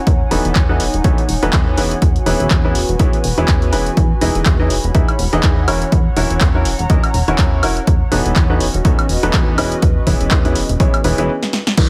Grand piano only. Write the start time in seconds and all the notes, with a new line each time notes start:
0.31 E3 B3 D#4 F#4 A4 B4
0.69 E3 B3 D#4 F#4 A4 B4
1.04 E3 B3 D#4 F#4 A4 C#5
1.43 E3 B3 D#4 F#4 A4 B4
1.77 E3 B3 C#4 E4 G#4 B4
2.26 E3 B3 C#4 E4 G#4 B4
2.64 E3 B3 C#4 E4 G#4 B4
2.99 E3 B3 C#4 E4 G#4 C#5
3.38 E3 B3 C#4 E4 G#4 B4
3.73 E3 B3 C#4 E4 G#4 B4
4.21 E3 D#4 E4 G#4 B4 D#5
4.60 E3 D#4 E4 G#4 B4 D#5
4.95 E3 D#4 E4 G#4 B4 E5
5.33 E3 D#4 E4 G#4 B4 D#5
5.68 E3 C#4 E4 F#4 A#4 C#5
6.16 E3 C#4 E4 F#4 A#4 C#5
6.55 E3 C#4 E4 F#4 A#4 C#5
6.90 E3 C#4 E4 F#4 A#4 D#5
7.28 E3 C#4 E4 F#4 A#4 C#5
7.63 C#4 E4 F#4 A#4 C#5
8.12 E3 B3 D#4 F#4 A4 B4
8.50 E3 B3 D#4 F#4 A4 B4
8.85 E3 B3 D#4 F#4 A4 C#5
9.23 E3 B3 D#4 F#4 A4 B4
9.58 E3 B3 C#4 E4 G#4 B4
10.07 E3 B3 C#4 E4 G#4 B4
10.45 E3 B3 C#4 E4 G#4 B4
10.80 E3 B3 C#4 E4 G#4 C#5
11.04 E3 B3 C#4 E4 G#4 B4
11.18 E3 B3 C#4 E4 G#4 B4